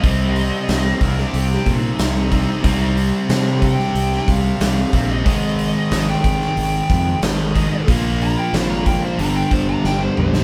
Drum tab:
HH |o-o-o-o-o-o-o-o-|o-o-o-o-o-o-o-o-|o-o-o-o-o-o-o-o-|o-o-o-o-o-o-----|
SD |----o--o-o--o---|----o--o-o--o---|----o--o----o---|----o-------o--o|
T2 |----------------|----------------|----------------|--------------o-|
BD |o-----o---o---o-|o-----o---o---o-|o-----o---o---o-|o-----o---o-----|